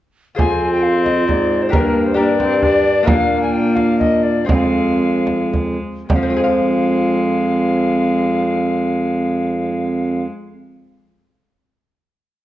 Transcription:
0.35 1.24 F2 medium
0.35 1.24 F2 soft
0.35 1.67 F4 soft
0.35 1.74 F4 medium
0.35 1.68 G#4 soft
0.35 1.69 C5 soft
0.35 0.70 G#5 medium
0.35 frame drum medium
0.39 1.69 C4 medium
0.72 0.84 G5 medium
0.82 1.03 F5 medium
1.04 1.27 D#5 medium
1.04 frame drum soft
1.27 1.69 G#2 soft
1.27 1.74 G#2 medium
1.27 1.63 D5 medium
1.27 frame drum soft
1.62 1.72 C5 medium
1.69 3.06 G2 medium
1.69 2.13 D4 soft
1.69 2.17 D4 medium
1.69 2.14 G4 soft
1.69 2.15 A#4 soft
1.69 2.08 A#4 medium
1.73 3.03 G2 soft
1.73 2.17 A#3 medium
1.73 frame drum medium
2.06 2.16 C5 medium
2.14 3.02 D4 soft
2.14 2.61 D4 medium
2.14 3.03 G4 soft
2.14 3.04 A#4 soft
2.14 3.08 D5 medium
2.18 2.40 A#3 medium
2.40 2.64 C4 medium
2.40 frame drum soft
2.62 3.07 D4 medium
2.62 3.06 G4 medium
2.62 frame drum soft
3.03 4.44 A#2 medium
3.03 4.44 A#2 soft
3.03 4.43 D4 soft
3.03 4.43 F4 soft
3.03 4.44 A#4 soft
3.03 3.41 F5 medium
3.07 4.45 A#3 medium
3.07 4.45 D4 medium
3.07 frame drum medium
3.42 3.53 G#5 medium
3.52 3.76 G5 medium
3.75 3.98 F5 medium
3.75 frame drum soft
3.98 4.24 D#5 medium
3.98 frame drum soft
4.22 4.47 D5 medium
4.45 5.78 F2 medium
4.45 5.76 F2 soft
4.45 6.03 C4 soft
4.45 5.78 C4 medium
4.45 6.03 F4 soft
4.45 6.04 G#4 soft
4.45 4.53 G5 medium
4.49 5.81 G#3 medium
4.49 5.50 F5 medium
4.49 frame drum medium
5.27 frame drum soft
5.53 frame drum soft
6.09 10.72 F2 soft
6.09 10.26 F2 medium
6.09 10.26 G#3 medium
6.09 10.26 C4 medium
6.09 6.15 G5 medium
6.09 frame drum medium
6.14 10.79 F3 soft
6.14 10.25 F5 medium
6.23 10.86 C4 soft
6.30 10.93 F4 soft
6.37 6.43 G#4 soft
6.44 11.07 F5 soft

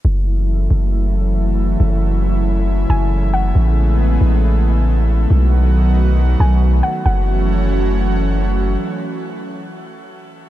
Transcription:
0.05 0.68 F#1 loud
0.05 5.26 C#3 medium
0.05 3.52 E3 medium
0.05 3.52 F#3 medium
0.05 3.52 A3 medium
0.05 5.26 E4 medium
0.71 1.76 F#1 loud
1.80 2.85 F#1 loud
2.90 3.53 F#1 medium
2.90 3.31 G#5 medium
3.34 3.54 F#5 medium
3.55 4.18 A1 loud
3.55 5.29 G#3 medium
3.55 7.02 A3 medium
3.55 5.29 B3 medium
4.21 5.26 A1 loud
5.30 6.36 B1 loud
5.30 7.04 D#3 medium
5.30 7.04 F#3 medium
5.30 7.04 B3 medium
5.30 7.04 F#4 medium
6.40 6.82 B1 loud
6.40 6.81 G#5 medium
6.83 7.04 F#5 medium
7.06 8.77 F#1 loud
7.06 10.49 E3 medium
7.06 10.49 F#3 medium
7.06 10.49 A3 medium
7.06 10.49 C#4 medium
7.06 10.49 F#4 medium
7.06 8.33 F#5 medium

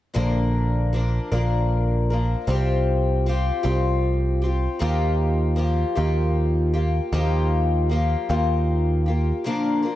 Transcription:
0.14 1.18 A#1 medium
0.14 0.93 A#2 medium
0.14 0.93 D3 medium
0.14 0.92 F3 medium
0.14 0.93 A#3 medium
0.14 0.93 D4 medium
0.14 0.94 A#4 medium
0.93 1.32 F3 medium
0.93 1.31 A#3 medium
0.93 1.31 D4 medium
0.93 1.30 A#4 medium
1.32 2.34 A#1 medium
1.32 2.11 A#2 soft
1.32 2.11 D3 medium
1.32 2.13 F3 medium
1.32 2.10 A#3 medium
1.32 2.10 D4 medium
1.32 2.09 A#4 medium
2.10 2.47 F3 soft
2.10 2.48 A#3 soft
2.10 2.49 D4 soft
2.10 2.49 A#4 soft
2.47 3.50 C2 medium
2.47 3.25 C3 medium
2.47 3.26 F3 medium
2.47 3.26 C4 medium
2.47 3.28 F4 medium
2.47 3.29 G4 medium
3.26 3.64 F3 medium
3.26 3.63 C4 medium
3.26 3.63 F4 medium
3.26 3.62 G4 medium
3.63 4.67 C2 medium
3.63 4.43 C3 medium
3.63 4.45 F3 medium
3.63 4.42 C4 medium
3.63 4.43 F4 medium
3.63 4.41 G4 medium
4.42 4.80 C4 soft
4.42 4.80 F4 soft
4.42 4.81 G4 soft
4.79 5.83 D#2 medium
4.79 5.58 D#3 medium
4.79 5.55 F3 medium
4.79 5.56 A#3 medium
4.79 5.58 F4 medium
4.79 5.58 G4 medium
5.56 5.96 F3 medium
5.56 5.95 A#3 medium
5.56 5.95 F4 medium
5.56 5.94 G4 medium
5.95 6.99 D#2 medium
5.95 6.75 D#3 medium
5.95 6.77 F3 medium
5.95 6.76 A#3 medium
5.95 6.74 F4 medium
5.95 6.72 G4 medium
6.74 7.12 A#3 soft
6.74 7.13 F4 soft
6.74 7.13 G4 medium
7.12 8.14 D#2 medium
7.12 7.90 D#3 medium
7.12 7.88 F3 medium
7.12 7.90 A#3 medium
7.12 7.91 F4 medium
7.12 7.91 G4 medium
7.89 8.29 F3 medium
7.89 8.29 A#3 medium
7.89 8.29 F4 medium
7.89 8.28 G4 medium
8.29 9.31 D#2 medium
8.29 9.08 D#3 medium
8.29 9.07 F3 medium
8.29 9.07 A#3 medium
8.29 9.07 F4 medium
8.29 9.05 G4 medium
9.06 9.45 A#3 soft
9.06 9.46 F4 soft
9.06 9.45 G4 soft
9.44 9.83 A#2 medium
9.44 9.84 D3 medium
9.44 9.84 F3 medium
9.44 9.84 A#3 medium
9.44 9.82 D4 medium
9.44 9.81 A#4 medium
9.83 9.96 F3 soft
9.83 9.96 A#3 soft
9.83 9.96 D4 soft
9.83 9.96 A#4 medium

